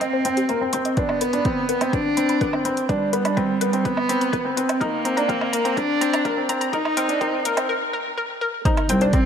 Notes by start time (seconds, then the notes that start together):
0.01 C4 D#5, closed hi-hat
0.13 C5
0.25 C4 G5, closed hi-hat
0.37 G4, closed hi-hat
0.49 A#3 C5, closed hi-hat
0.61 C4
0.73 C4 C6, closed hi-hat
0.85 D#5, closed hi-hat
0.97 B3 D4 B4, kick, closed hi-hat
1.09 low woodblock
1.21 B3 B5, closed hi-hat
1.33 D4 B5, closed hi-hat
1.45 C4 B4, kick, closed hi-hat
1.69 B3 B4, closed hi-hat
1.81 C4, closed hi-hat, low woodblock
1.93 D4 B4, kick, closed hi-hat
2.17 C4 B5, closed hi-hat
2.29 B5, closed hi-hat
2.41 B3 B4, kick, closed hi-hat
2.53 C4, low woodblock
2.65 C4 B4, closed hi-hat
2.77 closed hi-hat
2.89 G3 D4 B4, kick, closed hi-hat
3.13 B3 B5, closed hi-hat
3.25 D4 B5, closed hi-hat, low woodblock
3.37 C4 B4, kick, closed hi-hat
3.61 B3 B4, closed hi-hat
3.73 C4, closed hi-hat
3.85 B3 B4, kick, closed hi-hat
3.97 low woodblock
4.09 C4 B5, closed hi-hat
4.21 B5, closed hi-hat
4.33 B3 B4, kick, closed hi-hat
4.45 C4
4.57 C4 B4, closed hi-hat
4.69 closed hi-hat, low woodblock
4.74 C4
4.81 A#3 D#4 A#4, kick, closed hi-hat
5.05 C4 A#5, closed hi-hat
5.17 D4 A#5, closed hi-hat
5.29 C4 A#4, kick, closed hi-hat
5.41 low woodblock
5.53 A#3 A#5, closed hi-hat
5.65 C4 A#5, closed hi-hat
5.77 D4 A#4, kick, closed hi-hat
6.01 C4 A#5, closed hi-hat
6.13 A#5, closed hi-hat, low woodblock
6.25 A#3 A#4, kick, closed hi-hat
6.37 C4
6.49 C4 A#5, closed hi-hat
6.61 A#5, closed hi-hat
6.73 D#4 A#4, kick, closed hi-hat
6.85 low woodblock
6.97 C4 A#4, closed hi-hat
7.09 D4, closed hi-hat
7.21 C4 A#4, kick, closed hi-hat
7.45 A#3 A#4, closed hi-hat
7.57 C4, closed hi-hat, low woodblock
7.69 A#4
7.93 A#4
8.17 A#4
8.41 A#4
8.65 D#4 C5, kick, closed hi-hat
8.77 closed hi-hat, low woodblock
8.89 C2 C4 G5, closed hi-hat
9.01 D4 C5, closed hi-hat
9.13 C4 D5, kick, closed hi-hat